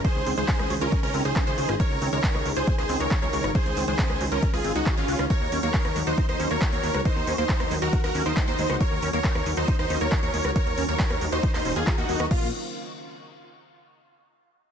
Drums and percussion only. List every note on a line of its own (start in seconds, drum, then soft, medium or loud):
0.05 kick loud
0.05 closed hi-hat medium
0.26 open hi-hat loud
0.37 closed hi-hat medium
0.48 kick loud
0.48 clap loud
0.48 closed hi-hat medium
0.59 cross-stick medium
0.59 closed hi-hat soft
0.70 open hi-hat loud
0.81 closed hi-hat medium
0.92 kick loud
0.92 closed hi-hat medium
1.03 cross-stick medium
1.03 open hi-hat medium
1.14 open hi-hat loud
1.25 closed hi-hat medium
1.36 kick loud
1.36 clap loud
1.36 closed hi-hat medium
1.47 closed hi-hat soft
1.58 open hi-hat loud
1.69 cross-stick medium
1.69 closed hi-hat medium
1.80 kick loud
1.80 closed hi-hat medium
2.02 open hi-hat loud
2.13 closed hi-hat medium
2.24 kick loud
2.24 clap loud
2.24 closed hi-hat medium
2.35 cross-stick medium
2.35 closed hi-hat soft
2.46 open hi-hat loud
2.56 closed hi-hat medium
2.67 kick loud
2.67 closed hi-hat medium
2.78 cross-stick medium
2.78 closed hi-hat soft
2.89 open hi-hat loud
3.00 closed hi-hat medium
3.11 kick loud
3.11 clap loud
3.11 closed hi-hat medium
3.22 closed hi-hat soft
3.33 open hi-hat loud
3.44 cross-stick medium
3.44 closed hi-hat medium
3.55 kick loud
3.55 closed hi-hat medium
3.66 closed hi-hat soft
3.77 open hi-hat loud
3.99 kick loud
3.99 clap loud
3.99 closed hi-hat medium
4.10 cross-stick medium
4.10 closed hi-hat soft
4.21 open hi-hat loud
4.32 closed hi-hat medium
4.43 kick loud
4.43 closed hi-hat medium
4.54 cross-stick medium
4.54 open hi-hat medium
4.64 open hi-hat loud
4.75 closed hi-hat medium
4.86 kick loud
4.86 clap loud
4.86 closed hi-hat medium
4.97 closed hi-hat soft
5.08 open hi-hat loud
5.19 cross-stick medium
5.19 closed hi-hat soft
5.30 kick loud
5.30 closed hi-hat medium
5.52 open hi-hat loud
5.63 closed hi-hat soft
5.74 kick loud
5.74 clap loud
5.74 closed hi-hat medium
5.85 cross-stick medium
5.85 closed hi-hat soft
5.96 open hi-hat loud
6.07 closed hi-hat soft
6.18 kick loud
6.18 closed hi-hat medium
6.29 cross-stick medium
6.29 closed hi-hat soft
6.40 open hi-hat loud
6.51 closed hi-hat medium
6.62 kick loud
6.62 clap loud
6.62 closed hi-hat medium
6.73 closed hi-hat soft
6.83 open hi-hat loud
6.94 cross-stick medium
6.94 closed hi-hat medium
7.05 kick loud
7.05 closed hi-hat medium
7.27 open hi-hat loud
7.38 closed hi-hat medium
7.49 kick loud
7.49 clap loud
7.49 closed hi-hat medium
7.60 cross-stick medium
7.60 closed hi-hat soft
7.71 open hi-hat loud
7.82 closed hi-hat medium
7.93 kick loud
7.93 closed hi-hat medium
8.04 cross-stick medium
8.04 open hi-hat medium
8.15 open hi-hat loud
8.26 closed hi-hat medium
8.37 kick loud
8.37 clap loud
8.37 closed hi-hat medium
8.48 closed hi-hat soft
8.59 open hi-hat loud
8.70 cross-stick medium
8.70 closed hi-hat medium
8.81 kick loud
8.81 closed hi-hat medium
9.02 open hi-hat loud
9.13 closed hi-hat medium
9.24 kick loud
9.24 clap loud
9.24 closed hi-hat medium
9.35 cross-stick medium
9.35 closed hi-hat soft
9.46 open hi-hat loud
9.57 closed hi-hat medium
9.68 kick loud
9.68 closed hi-hat medium
9.79 cross-stick medium
9.79 closed hi-hat soft
9.90 open hi-hat loud
10.01 closed hi-hat medium
10.12 kick loud
10.12 clap loud
10.12 closed hi-hat medium
10.23 closed hi-hat soft
10.34 open hi-hat loud
10.45 cross-stick medium
10.45 closed hi-hat medium
10.56 kick loud
10.56 closed hi-hat medium
10.67 closed hi-hat soft
10.78 open hi-hat loud
10.89 closed hi-hat medium
10.99 kick loud
10.99 clap loud
10.99 closed hi-hat medium
11.10 cross-stick medium
11.10 closed hi-hat soft
11.21 open hi-hat loud
11.32 closed hi-hat medium
11.43 kick loud
11.43 closed hi-hat medium
11.54 cross-stick medium
11.54 clap soft
11.54 open hi-hat medium
11.65 open hi-hat loud
11.76 closed hi-hat medium
11.87 kick loud
11.87 clap loud
11.87 closed hi-hat medium
11.98 closed hi-hat soft
12.09 open hi-hat loud
12.20 cross-stick medium
12.20 closed hi-hat medium
12.31 kick loud
12.31 crash medium